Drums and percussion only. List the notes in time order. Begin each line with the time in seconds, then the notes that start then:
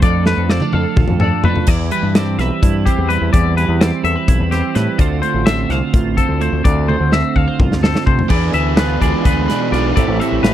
0.02 kick, closed hi-hat
0.26 snare
0.49 snare
0.60 high tom
0.73 high tom
0.96 kick, mid tom
1.08 mid tom
1.20 mid tom
1.44 floor tom
1.56 floor tom
1.67 kick, closed hi-hat, crash
1.91 closed hi-hat
2.15 snare, closed hi-hat
2.39 snare, closed hi-hat
2.63 kick, closed hi-hat
2.86 kick, closed hi-hat
3.10 closed hi-hat
3.34 kick, closed hi-hat
3.58 closed hi-hat
3.81 snare, closed hi-hat
4.05 closed hi-hat
4.28 kick, closed hi-hat
4.52 snare, closed hi-hat
4.75 snare, closed hi-hat
4.99 kick, closed hi-hat
5.23 closed hi-hat
5.47 snare, closed hi-hat
5.70 snare, closed hi-hat
5.94 kick, closed hi-hat
6.18 kick, closed hi-hat
6.41 closed hi-hat
6.65 kick, closed hi-hat
6.89 high tom
7.12 snare
7.36 kick
7.60 kick, mid tom
7.72 snare
7.84 snare
7.95 snare
8.07 kick
8.19 floor tom
8.30 kick, crash
8.54 closed hi-hat
8.77 snare, closed hi-hat
9.02 kick, closed hi-hat
9.25 kick, closed hi-hat
9.50 snare, closed hi-hat
9.74 closed hi-hat
9.97 kick, closed hi-hat
10.21 closed hi-hat
10.44 snare, closed hi-hat